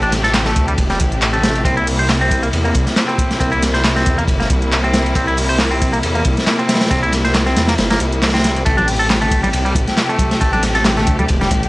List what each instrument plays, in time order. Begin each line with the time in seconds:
Already playing: detuned saw bass A1, string section C3 A3 G4
0.02 clean electric guitar D4, closed hi-hat, ride
0.12 snare, closed hi-hat, ride
0.24 clean electric guitar A4, snare, closed hi-hat
0.34 snare, clap, closed hi-hat, ride
0.45 clean electric guitar A3, snare, closed hi-hat
0.56 detuned saw bass D2, kick, closed hi-hat, ride
0.68 clean electric guitar G3, closed hi-hat
0.78 detuned saw bass E1, kick, closed hi-hat, ride
0.90 clean electric guitar G3, snare, closed hi-hat
1.00 detuned saw bass A1, kick, closed hi-hat, ride
1.12 closed hi-hat
1.22 clap, closed hi-hat, ride
1.33 clean electric guitar A3, closed hi-hat
1.43 snare, closed hi-hat, ride
1.55 closed hi-hat, ride
1.65 detuned saw bass C2, string section A#3 E4, clean electric guitar C4, kick, closed hi-hat, ride
1.77 clean electric guitar E4, closed hi-hat
1.87 closed hi-hat, open hi-hat
1.99 clean electric guitar C5, closed hi-hat
2.09 snare, clap, closed hi-hat, ride
2.21 clean electric guitar C4, closed hi-hat
2.31 kick, closed hi-hat, ride
2.43 clean electric guitar A#3, closed hi-hat, ride
2.53 detuned saw bass E2, closed hi-hat, ride
2.65 clean electric guitar A#3, closed hi-hat
2.74 detuned saw bass C2, kick, closed hi-hat, ride
2.87 snare, closed hi-hat
2.96 snare, clap, closed hi-hat, ride
3.08 clean electric guitar C4, closed hi-hat
3.18 kick, closed hi-hat, ride
3.31 snare, closed hi-hat
3.40 detuned saw bass C2, clean electric guitar C4, kick, closed hi-hat, ride
3.52 clean electric guitar E4, closed hi-hat, ride
3.63 snare, closed hi-hat, ride
3.74 clean electric guitar C5, snare, closed hi-hat
3.84 snare, clap, closed hi-hat, ride
3.96 clean electric guitar C4, snare, closed hi-hat
4.06 detuned saw bass E2, kick, closed hi-hat, ride
4.18 clean electric guitar A#3, closed hi-hat
4.28 detuned saw bass G1, kick, closed hi-hat, ride
4.40 clean electric guitar A#3, snare, closed hi-hat
4.50 detuned saw bass C2, kick, closed hi-hat, ride
4.62 closed hi-hat
4.72 clap, closed hi-hat, ride
4.84 clean electric guitar C4, closed hi-hat
4.93 snare, closed hi-hat, ride
5.06 closed hi-hat, ride
5.15 detuned saw bass C2, clean electric guitar C4, kick, closed hi-hat, ride
5.27 clean electric guitar E4, closed hi-hat
5.37 closed hi-hat, open hi-hat
5.49 clean electric guitar C5, closed hi-hat
5.59 snare, clap, closed hi-hat, ride
5.71 clean electric guitar C4, closed hi-hat
5.82 kick, closed hi-hat, ride
5.93 clean electric guitar A#3, closed hi-hat, ride
6.03 detuned saw bass E2, closed hi-hat, ride
6.15 clean electric guitar A#3, closed hi-hat
6.25 detuned saw bass C2, kick, closed hi-hat, ride
6.37 snare, closed hi-hat
6.47 snare, clap, closed hi-hat, ride
6.59 clean electric guitar C4, closed hi-hat
6.69 snare, closed hi-hat, ride
6.75 snare, ride
6.81 snare, closed hi-hat, ride
6.86 snare, ride
6.91 detuned saw bass C2, clean electric guitar C4, kick, closed hi-hat, ride
7.03 clean electric guitar E4, closed hi-hat, ride
7.12 snare, closed hi-hat, ride
7.25 clean electric guitar C5, snare, closed hi-hat
7.34 snare, clap, closed hi-hat, ride
7.46 clean electric guitar C4, snare, closed hi-hat
7.57 detuned saw bass E2, snare, closed hi-hat, ride
7.68 clean electric guitar A#3, snare, closed hi-hat, ride
7.78 detuned saw bass G1, snare, closed hi-hat, ride
7.90 clean electric guitar A#3, snare, closed hi-hat, ride
8.00 detuned saw bass C2, closed hi-hat, ride
8.12 closed hi-hat
8.22 snare, clap, closed hi-hat, ride
8.28 snare, ride
8.34 clean electric guitar C4, snare, closed hi-hat, ride
8.39 snare, ride
8.44 snare, closed hi-hat, ride
8.56 closed hi-hat, ride
8.65 detuned saw bass A1, string section C3 A3 G4, clean electric guitar A3, kick, closed hi-hat, ride
8.77 clean electric guitar D4, closed hi-hat, high conga
8.88 closed hi-hat, open hi-hat
8.99 clean electric guitar A4, closed hi-hat
9.10 snare, clap, closed hi-hat, ride, high conga
9.21 clean electric guitar A3, closed hi-hat, low conga
9.31 kick, closed hi-hat, ride
9.43 clean electric guitar G3, closed hi-hat, ride, high conga
9.53 detuned saw bass C2, closed hi-hat, ride
9.65 clean electric guitar G3, closed hi-hat
9.75 detuned saw bass A1, kick, closed hi-hat, ride, muted conga, high conga
9.88 snare, closed hi-hat
9.97 snare, clap, closed hi-hat, ride
10.09 clean electric guitar A3, closed hi-hat
10.19 kick, closed hi-hat, ride, muted conga, high conga
10.31 snare, closed hi-hat
10.41 detuned saw bass A1, clean electric guitar A3, kick, closed hi-hat, ride
10.53 clean electric guitar D4, closed hi-hat, ride, high conga
10.63 snare, closed hi-hat, ride
10.75 clean electric guitar A4, snare, closed hi-hat
10.85 snare, clap, closed hi-hat, ride, high conga
10.97 clean electric guitar A3, snare, closed hi-hat, low conga
11.07 detuned saw bass D2, kick, closed hi-hat, ride
11.19 clean electric guitar G3, closed hi-hat, high conga
11.28 detuned saw bass E1, kick, closed hi-hat, ride
11.41 clean electric guitar G3, snare, closed hi-hat, muted conga
11.51 detuned saw bass A1, kick, closed hi-hat, ride, high conga
11.63 closed hi-hat